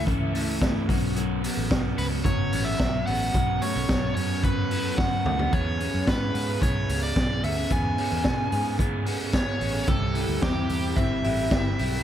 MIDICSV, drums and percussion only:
0, 0, Header, 1, 2, 480
1, 0, Start_track
1, 0, Tempo, 544959
1, 1022, Time_signature, 4, 2, 24, 8
1, 10597, End_track
2, 0, Start_track
2, 0, Title_t, "Drums"
2, 61, Note_on_c, 9, 36, 81
2, 68, Note_on_c, 9, 42, 70
2, 149, Note_off_c, 9, 36, 0
2, 156, Note_off_c, 9, 42, 0
2, 306, Note_on_c, 9, 46, 72
2, 394, Note_off_c, 9, 46, 0
2, 542, Note_on_c, 9, 36, 99
2, 546, Note_on_c, 9, 38, 91
2, 549, Note_on_c, 9, 42, 70
2, 630, Note_off_c, 9, 36, 0
2, 634, Note_off_c, 9, 38, 0
2, 637, Note_off_c, 9, 42, 0
2, 784, Note_on_c, 9, 36, 91
2, 788, Note_on_c, 9, 46, 68
2, 872, Note_off_c, 9, 36, 0
2, 876, Note_off_c, 9, 46, 0
2, 1023, Note_on_c, 9, 42, 58
2, 1112, Note_off_c, 9, 42, 0
2, 1267, Note_on_c, 9, 46, 66
2, 1355, Note_off_c, 9, 46, 0
2, 1505, Note_on_c, 9, 36, 115
2, 1507, Note_on_c, 9, 38, 101
2, 1513, Note_on_c, 9, 42, 77
2, 1593, Note_off_c, 9, 36, 0
2, 1595, Note_off_c, 9, 38, 0
2, 1601, Note_off_c, 9, 42, 0
2, 1744, Note_on_c, 9, 46, 63
2, 1832, Note_off_c, 9, 46, 0
2, 1981, Note_on_c, 9, 36, 83
2, 1986, Note_on_c, 9, 42, 65
2, 2069, Note_off_c, 9, 36, 0
2, 2074, Note_off_c, 9, 42, 0
2, 2224, Note_on_c, 9, 46, 66
2, 2312, Note_off_c, 9, 46, 0
2, 2463, Note_on_c, 9, 36, 99
2, 2463, Note_on_c, 9, 38, 89
2, 2465, Note_on_c, 9, 42, 74
2, 2551, Note_off_c, 9, 36, 0
2, 2551, Note_off_c, 9, 38, 0
2, 2553, Note_off_c, 9, 42, 0
2, 2705, Note_on_c, 9, 46, 77
2, 2793, Note_off_c, 9, 46, 0
2, 2944, Note_on_c, 9, 42, 63
2, 2945, Note_on_c, 9, 36, 83
2, 3032, Note_off_c, 9, 42, 0
2, 3034, Note_off_c, 9, 36, 0
2, 3185, Note_on_c, 9, 46, 70
2, 3273, Note_off_c, 9, 46, 0
2, 3424, Note_on_c, 9, 38, 100
2, 3429, Note_on_c, 9, 36, 106
2, 3430, Note_on_c, 9, 42, 75
2, 3512, Note_off_c, 9, 38, 0
2, 3517, Note_off_c, 9, 36, 0
2, 3518, Note_off_c, 9, 42, 0
2, 3667, Note_on_c, 9, 46, 62
2, 3755, Note_off_c, 9, 46, 0
2, 3907, Note_on_c, 9, 36, 83
2, 3911, Note_on_c, 9, 42, 64
2, 3995, Note_off_c, 9, 36, 0
2, 3999, Note_off_c, 9, 42, 0
2, 4146, Note_on_c, 9, 46, 72
2, 4234, Note_off_c, 9, 46, 0
2, 4387, Note_on_c, 9, 38, 50
2, 4388, Note_on_c, 9, 36, 105
2, 4475, Note_off_c, 9, 38, 0
2, 4476, Note_off_c, 9, 36, 0
2, 4630, Note_on_c, 9, 45, 71
2, 4718, Note_off_c, 9, 45, 0
2, 4749, Note_on_c, 9, 43, 77
2, 4837, Note_off_c, 9, 43, 0
2, 4869, Note_on_c, 9, 42, 63
2, 4870, Note_on_c, 9, 36, 91
2, 4957, Note_off_c, 9, 42, 0
2, 4958, Note_off_c, 9, 36, 0
2, 5111, Note_on_c, 9, 46, 68
2, 5199, Note_off_c, 9, 46, 0
2, 5350, Note_on_c, 9, 38, 100
2, 5352, Note_on_c, 9, 36, 119
2, 5355, Note_on_c, 9, 42, 77
2, 5438, Note_off_c, 9, 38, 0
2, 5440, Note_off_c, 9, 36, 0
2, 5444, Note_off_c, 9, 42, 0
2, 5590, Note_on_c, 9, 46, 64
2, 5678, Note_off_c, 9, 46, 0
2, 5829, Note_on_c, 9, 36, 86
2, 5835, Note_on_c, 9, 42, 65
2, 5917, Note_off_c, 9, 36, 0
2, 5923, Note_off_c, 9, 42, 0
2, 6071, Note_on_c, 9, 46, 70
2, 6159, Note_off_c, 9, 46, 0
2, 6309, Note_on_c, 9, 36, 108
2, 6310, Note_on_c, 9, 38, 90
2, 6313, Note_on_c, 9, 42, 64
2, 6397, Note_off_c, 9, 36, 0
2, 6398, Note_off_c, 9, 38, 0
2, 6401, Note_off_c, 9, 42, 0
2, 6550, Note_on_c, 9, 46, 74
2, 6638, Note_off_c, 9, 46, 0
2, 6787, Note_on_c, 9, 42, 63
2, 6788, Note_on_c, 9, 36, 91
2, 6875, Note_off_c, 9, 42, 0
2, 6876, Note_off_c, 9, 36, 0
2, 7029, Note_on_c, 9, 46, 72
2, 7117, Note_off_c, 9, 46, 0
2, 7261, Note_on_c, 9, 38, 106
2, 7267, Note_on_c, 9, 36, 113
2, 7267, Note_on_c, 9, 42, 78
2, 7349, Note_off_c, 9, 38, 0
2, 7355, Note_off_c, 9, 36, 0
2, 7355, Note_off_c, 9, 42, 0
2, 7503, Note_on_c, 9, 46, 56
2, 7592, Note_off_c, 9, 46, 0
2, 7743, Note_on_c, 9, 36, 86
2, 7748, Note_on_c, 9, 42, 65
2, 7831, Note_off_c, 9, 36, 0
2, 7836, Note_off_c, 9, 42, 0
2, 7982, Note_on_c, 9, 46, 74
2, 8070, Note_off_c, 9, 46, 0
2, 8221, Note_on_c, 9, 38, 92
2, 8222, Note_on_c, 9, 36, 100
2, 8224, Note_on_c, 9, 42, 70
2, 8309, Note_off_c, 9, 38, 0
2, 8310, Note_off_c, 9, 36, 0
2, 8312, Note_off_c, 9, 42, 0
2, 8463, Note_on_c, 9, 46, 77
2, 8551, Note_off_c, 9, 46, 0
2, 8698, Note_on_c, 9, 42, 66
2, 8701, Note_on_c, 9, 36, 95
2, 8786, Note_off_c, 9, 42, 0
2, 8789, Note_off_c, 9, 36, 0
2, 8938, Note_on_c, 9, 46, 71
2, 9026, Note_off_c, 9, 46, 0
2, 9180, Note_on_c, 9, 38, 101
2, 9183, Note_on_c, 9, 36, 115
2, 9186, Note_on_c, 9, 42, 79
2, 9268, Note_off_c, 9, 38, 0
2, 9271, Note_off_c, 9, 36, 0
2, 9274, Note_off_c, 9, 42, 0
2, 9418, Note_on_c, 9, 46, 62
2, 9506, Note_off_c, 9, 46, 0
2, 9660, Note_on_c, 9, 36, 91
2, 9663, Note_on_c, 9, 42, 69
2, 9748, Note_off_c, 9, 36, 0
2, 9751, Note_off_c, 9, 42, 0
2, 9902, Note_on_c, 9, 46, 70
2, 9990, Note_off_c, 9, 46, 0
2, 10141, Note_on_c, 9, 36, 104
2, 10141, Note_on_c, 9, 38, 92
2, 10144, Note_on_c, 9, 42, 69
2, 10229, Note_off_c, 9, 36, 0
2, 10229, Note_off_c, 9, 38, 0
2, 10232, Note_off_c, 9, 42, 0
2, 10385, Note_on_c, 9, 46, 74
2, 10473, Note_off_c, 9, 46, 0
2, 10597, End_track
0, 0, End_of_file